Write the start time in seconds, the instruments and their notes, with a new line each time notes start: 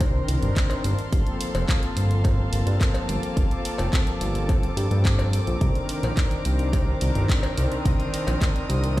Already playing: analog synth bass C2, analog synth pad D#3 C4 D4 A#4, violin section C5 A#5 C6
0.01 kick, closed hi-hat, cowbell
0.28 analog synth bass C2, analog synth pad D#3 C4 D4 A#4, open hi-hat
0.42 analog synth bass G1, closed hi-hat
0.56 kick, clap, closed hi-hat
0.70 closed hi-hat, cowbell
0.84 analog synth bass G1, violin section A#3 F5 A5, open hi-hat
0.99 closed hi-hat
1.12 analog synth bass G1, analog synth pad F3 A#3 C4 A4, kick, closed hi-hat
1.27 closed hi-hat
1.41 open hi-hat
1.55 analog synth bass F1, closed hi-hat, cowbell
1.69 kick, clap, closed hi-hat
1.83 closed hi-hat
1.96 analog synth bass G1, analog synth pad F3 A#3 C4 A4, open hi-hat
2.11 closed hi-hat
2.24 kick, closed hi-hat, cowbell
2.52 analog synth bass G1, analog synth pad F3 A#3 C4 A4, open hi-hat
2.67 analog synth bass G2, closed hi-hat
2.81 kick, clap, closed hi-hat
2.94 closed hi-hat, cowbell
3.09 analog synth bass G1, violin section D6, open hi-hat
3.23 closed hi-hat
3.36 analog synth bass G1, analog synth pad F3 A#3 C4 A4, kick, closed hi-hat
3.51 closed hi-hat
3.65 open hi-hat
3.78 analog synth bass F1, closed hi-hat, cowbell
3.93 kick, clap, closed hi-hat
4.07 closed hi-hat
4.21 analog synth bass G1, analog synth pad F3 A#3 C4 A4, open hi-hat
4.35 closed hi-hat
4.49 kick, closed hi-hat, cowbell
4.63 closed hi-hat
4.76 analog synth bass G2, analog synth pad F3 A#3 C4 A4, open hi-hat
4.91 analog synth bass G2, closed hi-hat
5.05 kick, clap, closed hi-hat
5.19 closed hi-hat, cowbell
5.33 open hi-hat
5.47 analog synth bass A#1, closed hi-hat
5.60 analog synth bass C2, analog synth pad D#3 C4 D4 A#4, violin section C5 A#5, kick, closed hi-hat
5.75 closed hi-hat
5.89 open hi-hat
6.03 analog synth bass A#1, closed hi-hat, cowbell
6.17 kick, clap, closed hi-hat
6.31 closed hi-hat
6.45 analog synth bass C2, analog synth pad D#3 C4 D4 A#4, open hi-hat
6.59 closed hi-hat
6.73 kick, closed hi-hat, cowbell
7.00 analog synth bass C2, analog synth pad D#3 C4 D4 A#4, open hi-hat
7.15 analog synth bass G1, closed hi-hat
7.29 kick, clap, closed hi-hat
7.43 closed hi-hat, cowbell
7.57 analog synth bass C2, open hi-hat
7.72 closed hi-hat
7.84 analog synth bass C2, analog synth pad D#3 C4 D4 A#4, violin section D#6, kick, closed hi-hat
8.00 closed hi-hat
8.14 open hi-hat
8.27 analog synth bass A#1, closed hi-hat, cowbell
8.41 kick, clap, closed hi-hat
8.56 closed hi-hat
8.69 analog synth bass C2, analog synth pad D#3 C4 D4 A#4, open hi-hat
8.84 closed hi-hat